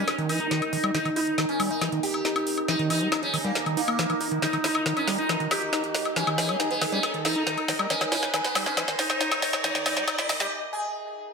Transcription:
Already playing: sitar C#4, synth drone D#4, ambient pad D#4 A#4 D#5 A#5, riser
0.08 snare, closed hi-hat, high woodblock
0.18 acid bass D#3, closed hi-hat
0.29 acid bass E3, sitar D#4, open hi-hat, high woodblock
0.40 acid bass D#4, closed hi-hat
0.51 acid bass D#3, snare, closed hi-hat
0.62 closed hi-hat, high woodblock
0.73 acid bass D#3, open hi-hat
0.84 acid bass G3, closed hi-hat, high woodblock
0.95 acid bass D#3, sitar D#4, snare, closed hi-hat
1.05 acid bass D#3, closed hi-hat, high woodblock
1.16 sitar D#4, acid bass E4, open hi-hat
1.27 closed hi-hat
1.38 acid bass D#3, snare, closed hi-hat, high woodblock
1.49 sitar C#4, closed hi-hat
1.60 acid bass G3, open hi-hat, high woodblock
1.71 sitar D#4, closed hi-hat
1.81 acid bass E3, snare, closed hi-hat, high woodblock
1.92 acid bass D#3, closed hi-hat
2.03 sitar G4, open hi-hat
2.14 closed hi-hat, high woodblock
2.25 acid bass D#4, snare, closed hi-hat
2.36 closed hi-hat, high woodblock
2.47 open hi-hat
2.58 closed hi-hat, high woodblock
2.68 acid bass E3, sitar D#4, snare, closed hi-hat
2.79 acid bass D#3, closed hi-hat
2.90 acid bass E3, sitar D#4, open hi-hat, high woodblock
3.01 acid bass G3, closed hi-hat
3.12 acid bass D#4, snare, closed hi-hat, high woodblock
3.23 sitar C#4, closed hi-hat
3.34 acid bass D#3, open hi-hat, high woodblock
3.44 acid bass G3, sitar A#3, closed hi-hat
3.55 snare, closed hi-hat
3.66 acid bass D#3, closed hi-hat, high woodblock
3.77 sitar A#3, acid bass D#4, open hi-hat
3.88 acid bass A#3, closed hi-hat, high woodblock
3.99 acid bass E3, snare, closed hi-hat
4.10 acid bass E3, closed hi-hat, high woodblock
4.21 acid bass D#4, open hi-hat
4.31 acid bass D#3, closed hi-hat
4.42 acid bass D#3, sitar D#4, snare, closed hi-hat
4.53 acid bass D#3, closed hi-hat, high woodblock
4.64 sitar D#4, acid bass E4, snare, open hi-hat
4.75 closed hi-hat, high woodblock
4.86 acid bass D#3, snare, closed hi-hat
4.97 sitar C#4, closed hi-hat, high woodblock
5.08 acid bass G3, snare, open hi-hat
5.18 sitar D#4, closed hi-hat
5.29 acid bass E3, snare, closed hi-hat, high woodblock
5.40 acid bass D#3, closed hi-hat
5.51 sitar G4, snare, open hi-hat, high woodblock
5.62 closed hi-hat
5.73 acid bass D#4, snare, closed hi-hat, high woodblock
5.84 closed hi-hat
5.95 snare, open hi-hat
6.05 closed hi-hat, high woodblock
6.16 acid bass E3, sitar C#4, snare, closed hi-hat
6.27 acid bass D#3, closed hi-hat, high woodblock
6.38 acid bass E3, sitar C#4, snare, open hi-hat
6.49 acid bass G3, closed hi-hat, high woodblock
6.60 acid bass D#4, snare, closed hi-hat
6.71 sitar B3, closed hi-hat
6.81 acid bass D#3, snare, open hi-hat, high woodblock
6.92 acid bass G3, sitar C#4, closed hi-hat
7.03 snare, closed hi-hat, high woodblock
7.14 acid bass D#3, closed hi-hat
7.25 acid bass E3, sitar D#4, snare, open hi-hat, high woodblock
7.36 acid bass D#4, closed hi-hat
7.47 acid bass D#3, snare, closed hi-hat
7.58 closed hi-hat, high woodblock
7.68 acid bass D#3, snare, open hi-hat
7.79 acid bass G3, closed hi-hat, high woodblock
7.90 acid bass D#3, sitar C#4, snare, closed hi-hat
8.01 acid bass D#3, snare, closed hi-hat, high woodblock
8.12 sitar C#4, acid bass E4, snare, open hi-hat
8.23 snare, closed hi-hat
8.34 acid bass D#3, snare, closed hi-hat, high woodblock
8.45 sitar B3, snare, closed hi-hat
8.55 acid bass G3, snare, open hi-hat, high woodblock
8.66 sitar C#4, snare, closed hi-hat
8.77 acid bass E3, snare, closed hi-hat, high woodblock
8.88 acid bass D#3, snare, closed hi-hat
8.99 sitar D#4, snare, open hi-hat
9.10 snare, closed hi-hat, high woodblock
9.21 acid bass D#4, snare, closed hi-hat
9.31 snare, closed hi-hat, high woodblock
9.42 snare, open hi-hat
9.53 snare, high woodblock
9.64 acid bass E3, sitar D#4, snare, closed hi-hat
9.75 acid bass D#3, snare, closed hi-hat
9.86 acid bass E3, sitar D#4, snare, open hi-hat, high woodblock
9.97 acid bass G3, snare
10.08 acid bass D#4, snare, closed hi-hat, high woodblock
10.18 sitar E4, snare, closed hi-hat
10.29 acid bass D#3, snare, open hi-hat, high woodblock
10.40 acid bass G3, sitar G4, snare, closed hi-hat
10.73 sitar G#4

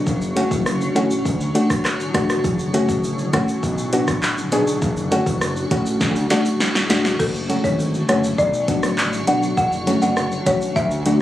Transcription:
Already playing: ambient pad F#3 F#4
0.07 analog synth bass F#1, kick, shaker
0.21 shaker
0.36 synth pluck A3 C#4 F#4, closed hi-hat, shaker
0.51 analog synth bass F#1, kick, shaker
0.66 cross-stick, shaker
0.81 shaker
0.95 analog synth bass A1, synth pluck A3 C#4 F#4, closed hi-hat, shaker
1.11 shaker
1.25 analog synth bass D2, ambient pad A2, kick, shaker
1.41 shaker
1.55 synth pluck A3 D4 F#4, closed hi-hat, shaker
1.70 kick, cross-stick, shaker
1.85 cross-stick, clap, shaker
2.00 shaker
2.14 analog synth bass E1, synth pluck A3 D4 F#4, kick, cross-stick, closed hi-hat, shaker
2.30 cross-stick, shaker
2.44 analog synth bass F#1, kick, shaker
2.59 shaker
2.74 synth pluck A3 C#4 F#4, closed hi-hat, shaker
2.89 kick, shaker
3.04 shaker
3.19 shaker
3.33 synth pluck A3 C#4 F#4, kick, cross-stick, closed hi-hat, shaker
3.48 shaker
3.63 analog synth bass B1, ambient pad F#4, kick, shaker
3.78 shaker
3.93 synth pluck B3 D4 F#4, closed hi-hat, shaker
4.08 kick, cross-stick, shaker
4.23 clap, shaker
4.38 shaker
4.52 analog synth bass B1, synth pluck B3 D4 G#4, closed hi-hat, shaker
4.67 shaker
4.82 analog synth bass F#1, ambient pad A2, kick, shaker
4.97 shaker
5.11 synth pluck A3 C#4 F#4, closed hi-hat, shaker
5.26 analog synth bass F#1, kick, shaker
5.41 cross-stick, shaker
5.56 shaker
5.71 analog synth bass A1, synth pluck A3 C#4 F#4, kick, closed hi-hat, shaker
5.86 shaker
6.01 analog synth bass D2, kick, snare, shaker
6.16 shaker
6.30 synth pluck A3 D4 F#4, snare, closed hi-hat, shaker
6.45 shaker
6.60 snare, shaker
6.75 snare, shaker
6.90 analog synth bass E1, synth pluck A3 D4 F#4, snare, closed hi-hat, shaker
7.05 snare, shaker
7.19 analog synth bass F#1, ambient pad F#3 F#4, marimba A4, kick, crash, shaker
7.35 shaker
7.49 synth pluck F#3 A3 C#4 F#4, closed hi-hat, shaker
7.64 analog synth bass G#1, marimba C#5, kick, shaker
7.79 shaker
7.94 shaker
8.09 analog synth bass F#1, synth pluck F#3 A3 C#4 F#4, marimba C#5, cross-stick, closed hi-hat, shaker
8.24 shaker
8.38 analog synth bass B1, marimba D5, kick, shaker
8.54 shaker
8.68 synth pluck F#3 B3 D4 F#4, kick, closed hi-hat, shaker
8.83 analog synth bass A1, cross-stick, shaker
8.98 clap, shaker
9.13 shaker
9.27 analog synth bass B1, synth pluck F#3 B3 D4 F#4, marimba F#5, closed hi-hat, shaker
9.43 shaker
9.57 analog synth bass F#1, ambient pad F#3 A3, marimba F#5, kick, shaker
9.72 shaker
9.87 synth pluck F#3 A3 C#4 F#4, closed hi-hat, shaker
10.02 analog synth bass F#1, marimba F#5, high timbale, shaker
10.17 cross-stick, shaker
10.32 shaker
10.46 analog synth bass A1, synth pluck F#3 A3 C#4 F#4, marimba C#5, kick, closed hi-hat, shaker
10.62 shaker
10.76 analog synth bass D2, marimba E5, kick, shaker
10.91 shaker
11.06 synth pluck F#3 A3 D4 F#4, closed hi-hat, shaker

